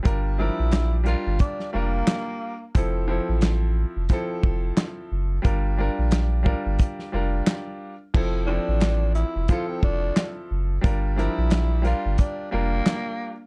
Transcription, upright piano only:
X:1
M:4/4
L:1/8
Q:"Swing 16ths" 1/4=89
K:Gdor
V:1 name="Upright piano"
[G,DFB] [F,G,DB]2 [G,DFB]2 [G,DFB]2 z | [F,CEA] [F,CEA]3 [F,CEA]4 | [G,DFB] [G,DFB]2 [G,DFB]2 [G,DFB]2 z | [F,CEA] [F,CEA]3 [F,CEA]4 |
[G,DFB] [F,G,DB]2 [G,DFB]2 [G,DFB]2 z |]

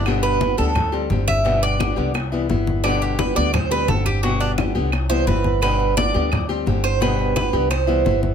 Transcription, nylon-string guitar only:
X:1
M:4/4
L:1/8
Q:1/4=172
K:G
V:1 name="Nylon-string guitar" clef=bass
[B,,D,G,B,G]2 [D,G,B,G] [D,G,B,G] z [G,CG] [D,G,CG]2 | [B,,D,G,B,G]2 [D,G,B,G] [D,G,B,G] z [E,G,B,E] [E,G,B,E]2 | [B,,D,G,B,G]2 [D,G,B,G] [D,G,B,G] z [G,CG] [D,G,CG]2 | [B,,D,G,B,G]2 [D,G,B,G] [D,G,B,G] z [E,G,B,E] [E,G,B,E]2 |
[B,,D,G,B,G]2 [D,G,B,G] [D,G,B,G] z [G,CG] [D,G,CG]2 | [B,,D,G,B,G]2 [D,G,B,G] [D,G,B,G] z [E,G,B,E] [E,G,B,E]2 |]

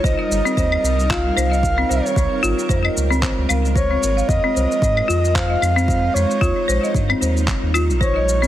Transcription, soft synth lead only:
X:1
M:4/4
L:1/8
Q:"Swing 16ths" 1/4=113
K:Fm
V:1 name="Soft synth lead"
e4 f3 d- | d2 z4 d2 | e4 f3 d- | d2 z4 d2 |]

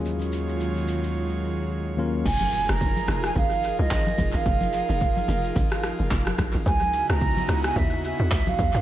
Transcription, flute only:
X:1
M:4/4
L:1/16
Q:"Swing 16ths" 1/4=109
K:Fphr
V:1 name="Flute"
z16 | a3 b4 a f3 e4 f- | f6- f z8 z | a3 b4 a _f2 f2 f =f3 |]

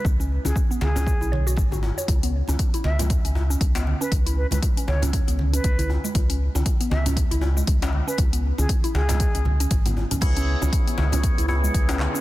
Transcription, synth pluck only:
X:1
M:4/4
L:1/16
Q:"Swing 16ths" 1/4=118
K:C#m
V:1 name="Synth pluck"
z C z C z B, z C z E c F z F z c | z B, z C z E z G, z C z C z B, z C | z E z G, z C z C z B, z C z E z G, | z C z C z B, z C z E z G, z C z C |
z B, z C z E z G, z C z C z B, z C | z C z C z B, z C z E z G, z C z C |]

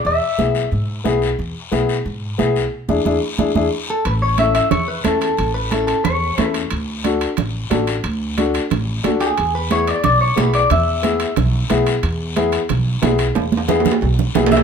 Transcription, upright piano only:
X:1
M:4/4
L:1/8
Q:1/4=180
K:Emix
V:1 name="Upright piano"
z2 [B,EG] z3 [B,EG] z | z2 [B,EG] z3 [B,EG] z | z [DEG] [DEG] z [DEG] [DEG] z2 | z2 [CEA] z3 [CEA] z |
z2 [CEA] z3 [CEA] z | z2 [DFA] z3 [DFA] z | z2 [DFA] z3 [DFA] z | z2 [B,EG] z3 [B,EG] z |
z2 [B,EG] z3 [B,EG] z | z2 [B,EG] z3 [B,EG] z | z2 [B,EG] z3 [B,EG] z |]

